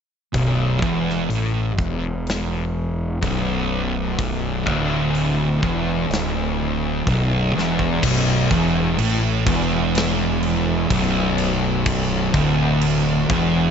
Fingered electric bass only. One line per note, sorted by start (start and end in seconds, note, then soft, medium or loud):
0.34 0.79 B0 medium
0.82 1.27 E1 medium
1.30 1.75 A1 medium
1.78 3.18 E1 medium
3.22 4.63 B0 medium
4.67 5.59 D1 medium
5.63 6.07 E1 medium
6.10 7.02 D1 medium
7.07 7.52 B0 medium
7.55 7.99 E1 medium
8.03 8.47 B0 medium
8.51 8.95 E1 medium
8.99 9.43 A1 loud
9.47 10.86 E1 loud
10.90 12.30 B0 loud
12.34 13.26 D1 medium
13.29 13.71 E1 loud